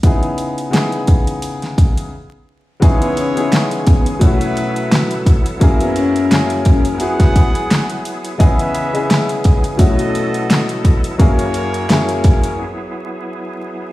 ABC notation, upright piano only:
X:1
M:4/4
L:1/16
Q:"Swing 16ths" 1/4=86
K:C#m
V:1 name="Upright piano"
[C,B,DEG]4 [C,B,DEG]8 z4 | [C,B,DEG]3 [C,B,DEG]4- [C,B,DEG] [B,,A,CEF]6 z2 | [F,,^A,CEG]4 [F,,A,CEG]4 [B,EFG]6- [B,EFG] z | [C,B,EGd]3 [C,B,EGd]4- [C,B,EGd] [B,,A,CEF]6 z2 |
[F,,^A,CEG]4 [F,,A,CEG]4 z8 |]